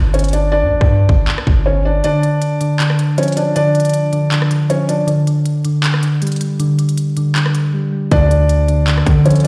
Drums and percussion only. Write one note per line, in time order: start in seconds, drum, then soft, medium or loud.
0.14 closed hi-hat medium
0.19 closed hi-hat medium
0.24 closed hi-hat medium
0.28 closed hi-hat soft
0.33 closed hi-hat medium
0.81 kick loud
1.09 kick loud
1.28 clap loud
1.38 cross-stick loud
1.47 kick loud
2.04 closed hi-hat medium
2.23 closed hi-hat medium
2.42 closed hi-hat medium
2.61 closed hi-hat medium
2.80 clap loud
2.80 closed hi-hat medium
2.90 cross-stick medium
2.99 closed hi-hat medium
3.18 closed hi-hat medium
3.23 closed hi-hat medium
3.28 closed hi-hat medium
3.32 closed hi-hat soft
3.37 closed hi-hat medium
3.56 closed hi-hat medium
3.75 closed hi-hat medium
3.80 closed hi-hat medium
3.85 closed hi-hat medium
3.89 closed hi-hat medium
3.94 closed hi-hat medium
4.13 closed hi-hat medium
4.32 clap loud
4.32 closed hi-hat medium
4.42 cross-stick loud
4.51 closed hi-hat medium
4.70 closed hi-hat medium
4.89 closed hi-hat medium
5.08 closed hi-hat medium
5.27 closed hi-hat medium
5.46 closed hi-hat medium
5.65 closed hi-hat medium
5.84 clap loud
5.84 closed hi-hat medium
5.94 cross-stick medium
6.03 closed hi-hat medium
6.22 closed hi-hat medium
6.27 closed hi-hat medium
6.32 closed hi-hat soft
6.36 closed hi-hat soft
6.41 closed hi-hat medium
6.60 closed hi-hat medium
6.79 closed hi-hat medium
6.89 closed hi-hat soft
6.97 closed hi-hat medium
7.17 closed hi-hat medium
7.36 clap loud
7.36 closed hi-hat medium
7.46 cross-stick medium
7.55 closed hi-hat medium
8.11 kick loud
8.11 closed hi-hat medium
8.31 closed hi-hat medium
8.49 closed hi-hat medium
8.68 closed hi-hat medium
8.88 clap loud
8.88 closed hi-hat medium
8.98 cross-stick medium
9.06 kick loud
9.06 closed hi-hat medium
9.26 closed hi-hat medium
9.31 closed hi-hat medium
9.36 closed hi-hat medium
9.40 closed hi-hat soft